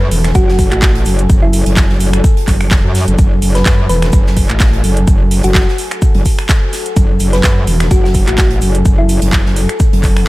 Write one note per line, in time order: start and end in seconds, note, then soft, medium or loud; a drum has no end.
0.00 10.28 F#4 medium
0.00 10.28 A4 medium
0.00 10.28 G#5 medium
0.11 0.33 E1 loud
0.11 open hi-hat loud
0.11 shaker medium
0.24 finger snap medium
0.24 snare soft
0.24 closed hi-hat medium
0.35 0.70 F#1 loud
0.35 0.43 F#4 medium
0.35 kick loud
0.35 closed hi-hat medium
0.35 shaker medium
0.48 0.55 F#4 medium
0.48 snare medium
0.59 kick medium
0.59 open hi-hat loud
0.59 shaker medium
0.72 1.04 A1 loud
0.72 0.78 F#4 medium
0.72 finger snap medium
0.72 clap soft
0.72 closed hi-hat medium
0.82 kick loud
0.82 snare loud
0.82 clap loud
0.82 closed hi-hat medium
0.82 shaker medium
0.95 closed hi-hat soft
1.05 1.28 F#1 loud
1.05 open hi-hat loud
1.05 shaker medium
1.19 closed hi-hat medium
1.30 1.64 F#1 loud
1.30 kick loud
1.30 closed hi-hat medium
1.30 shaker medium
1.43 1.77 E4 medium
1.53 open hi-hat loud
1.53 shaker medium
1.66 1.88 F#1 loud
1.66 closed hi-hat medium
1.66 closed hi-hat soft
1.77 kick loud
1.77 snare loud
1.77 clap loud
1.77 closed hi-hat medium
1.77 shaker medium
1.89 2.22 F#1 loud
1.89 snare medium
2.00 open hi-hat loud
2.00 shaker medium
2.13 finger snap medium
2.13 closed hi-hat medium
2.24 kick loud
2.24 closed hi-hat medium
2.24 shaker loud
2.37 closed hi-hat soft
2.48 2.82 F#1 loud
2.48 kick medium
2.48 clap soft
2.48 open hi-hat loud
2.48 shaker medium
2.61 finger snap medium
2.61 open hi-hat medium
2.71 kick loud
2.71 snare loud
2.71 clap loud
2.71 closed hi-hat medium
2.71 shaker medium
2.84 3.06 F#2 loud
2.95 snare medium
2.95 open hi-hat loud
2.95 shaker medium
3.08 3.17 F#1 loud
3.08 closed hi-hat medium
3.18 3.40 F#1 loud
3.18 kick loud
3.18 closed hi-hat medium
3.18 shaker medium
3.42 3.64 F#1 loud
3.42 open hi-hat loud
3.42 shaker medium
3.55 3.87 B4 medium
3.55 snare soft
3.55 closed hi-hat medium
3.66 3.88 F#2 loud
3.66 kick loud
3.66 snare loud
3.66 clap loud
3.66 closed hi-hat medium
3.66 shaker medium
3.89 4.11 E1 loud
3.89 4.06 B4 medium
3.89 open hi-hat loud
3.89 shaker medium
4.02 finger snap medium
4.02 snare medium
4.02 closed hi-hat medium
4.12 4.48 F#1 medium
4.12 kick loud
4.12 closed hi-hat medium
4.12 shaker loud
4.26 snare medium
4.37 kick medium
4.37 open hi-hat loud
4.37 shaker medium
4.50 4.82 A1 loud
4.50 finger snap medium
4.50 clap soft
4.50 closed hi-hat medium
4.60 kick loud
4.60 snare loud
4.60 clap loud
4.60 closed hi-hat medium
4.60 shaker medium
4.73 closed hi-hat soft
4.84 5.06 F#1 loud
4.84 open hi-hat loud
4.84 shaker medium
4.97 closed hi-hat medium
5.07 5.42 F#1 loud
5.07 kick loud
5.07 closed hi-hat medium
5.07 shaker medium
5.31 open hi-hat loud
5.31 shaker medium
5.43 5.66 F#1 loud
5.43 5.91 F#4 medium
5.43 closed hi-hat soft
5.43 closed hi-hat medium
5.55 kick loud
5.55 snare loud
5.55 clap loud
5.55 closed hi-hat medium
5.55 shaker medium
5.68 snare soft
5.78 open hi-hat loud
5.78 shaker medium
5.91 finger snap medium
5.91 closed hi-hat medium
6.02 kick loud
6.02 closed hi-hat medium
6.02 shaker medium
6.15 6.24 F#1 loud
6.15 closed hi-hat soft
6.25 kick medium
6.25 open hi-hat loud
6.25 shaker medium
6.39 finger snap medium
6.39 open hi-hat medium
6.49 kick loud
6.49 snare loud
6.49 clap loud
6.49 closed hi-hat medium
6.49 shaker loud
6.73 snare medium
6.73 open hi-hat loud
6.73 shaker medium
6.86 closed hi-hat medium
6.96 7.18 F#1 loud
6.96 kick loud
6.96 closed hi-hat medium
6.96 shaker medium
7.19 7.42 F#1 loud
7.19 open hi-hat loud
7.19 shaker medium
7.33 7.65 B4 medium
7.33 snare medium
7.33 closed hi-hat medium
7.44 7.66 F#2 loud
7.44 kick loud
7.44 snare loud
7.44 clap loud
7.44 closed hi-hat medium
7.44 shaker loud
7.67 7.89 E1 loud
7.67 open hi-hat loud
7.67 shaker medium
7.80 finger snap medium
7.80 snare soft
7.80 closed hi-hat medium
7.91 8.25 F#1 loud
7.91 7.99 F#4 medium
7.91 kick loud
7.91 closed hi-hat medium
7.91 shaker medium
8.04 8.11 F#4 medium
8.04 snare soft
8.14 kick medium
8.14 open hi-hat loud
8.14 shaker medium
8.27 8.60 A1 loud
8.27 8.34 F#4 medium
8.27 finger snap medium
8.27 clap soft
8.27 closed hi-hat medium
8.38 8.46 F#4 medium
8.38 kick loud
8.38 snare loud
8.38 clap loud
8.38 closed hi-hat medium
8.38 shaker medium
8.50 closed hi-hat soft
8.61 8.84 F#1 loud
8.61 open hi-hat loud
8.61 shaker medium
8.75 closed hi-hat medium
8.85 9.20 F#1 loud
8.85 kick loud
8.85 closed hi-hat medium
8.85 shaker loud
8.98 9.33 E4 medium
9.09 open hi-hat loud
9.09 shaker medium
9.22 9.44 F#1 medium
9.22 closed hi-hat soft
9.22 closed hi-hat medium
9.32 kick loud
9.32 snare loud
9.32 clap loud
9.32 closed hi-hat medium
9.32 shaker medium
9.46 9.67 F#1 medium
9.46 snare medium
9.56 open hi-hat loud
9.56 shaker medium
9.69 finger snap medium
9.69 closed hi-hat medium
9.80 kick loud
9.80 closed hi-hat medium
9.80 shaker medium
9.93 10.28 F#1 medium
9.93 closed hi-hat soft
10.03 kick medium
10.03 clap soft
10.03 open hi-hat loud
10.03 shaker medium
10.17 finger snap medium
10.17 open hi-hat medium